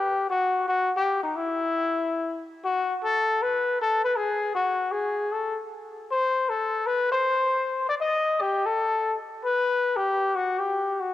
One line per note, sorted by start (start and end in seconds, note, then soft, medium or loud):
0.00 0.29 G4 medium
0.30 0.65 F#4 medium
0.68 0.91 F#4 medium
0.97 1.22 G4 medium
1.23 1.37 D#4 medium
1.36 2.50 E4 medium
2.64 2.98 F#4 medium
3.04 3.44 A4 medium
3.42 3.79 B4 medium
3.81 4.03 A4 medium
4.04 4.18 B4 medium
4.16 4.54 G#4 medium
4.55 4.93 F#4 medium
4.92 5.33 G#4 medium
5.32 5.57 A4 medium
6.11 6.51 C5 medium
6.49 6.88 A4 medium
6.86 7.11 B4 medium
7.12 7.85 C5 medium
7.89 7.95 D5 medium
8.01 8.42 D#5 medium
8.41 8.67 G4 medium
8.66 9.18 A4 medium
9.45 9.98 B4 medium
9.96 10.37 G4 medium
10.35 10.60 F#4 medium
10.58 11.02 G4 medium
11.00 11.14 F#4 medium